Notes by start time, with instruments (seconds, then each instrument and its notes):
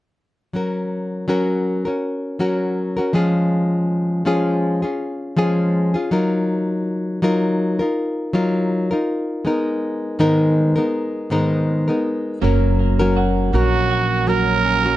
0.53 nylon-string guitar F#3 C#4 F#4 A#4
1.28 nylon-string guitar F#3 C#4 F#4 A#4
1.85 nylon-string guitar C#4 F#4 A#4
2.39 nylon-string guitar F#3 C#4 F#4 A#4
2.97 nylon-string guitar C#4 F#4 A#4
3.13 nylon-string guitar F3 G#3 C#4 F4 G#4
4.25 nylon-string guitar F3 G#3 C#4 F4 G#4
4.82 nylon-string guitar C#4 F4 G#4
5.37 nylon-string guitar F3 G#3 C#4 F4 G#4
5.94 nylon-string guitar C#4 F4 G#4
6.11 nylon-string guitar F#3 D#4 F4 A#4
7.22 nylon-string guitar F#3 D#4 F4 A#4
7.79 nylon-string guitar D#4 F4 A#4
8.33 nylon-string guitar F#3 D#4 F4 A#4
8.91 nylon-string guitar D#4 F4 A#4
9.45 nylon-string guitar G#3 B3 D#4 A#4
10.19 nylon-string guitar G#2 D#3 G#3 B3 D#4 A#4
10.76 nylon-string guitar G#3 B3 D#4 A#4
11.30 nylon-string guitar G#2 D#3 G#3 B3 D#4 A#4
11.88 nylon-string guitar G#3 B3 D#4 A#4
12.42 upright bass F#1, nylon-string guitar F#3 C#4 F#4 A#4, clean electric guitar A#3
12.79 clean electric guitar A#3
12.99 nylon-string guitar F#3 C#4 F#4 A#4
13.17 clean electric guitar F#4
13.53 upright bass A#1, nylon-string guitar F#3 C#4 F#4 A#4, clean electric guitar A#3, trumpet F#4
13.90 clean electric guitar F#4
14.27 nylon-string guitar F#3 C#4 F#4 A#4, clean electric guitar A#3, trumpet A#4
14.65 clean electric guitar C#4
14.84 nylon-string guitar C#4 F#4 A#4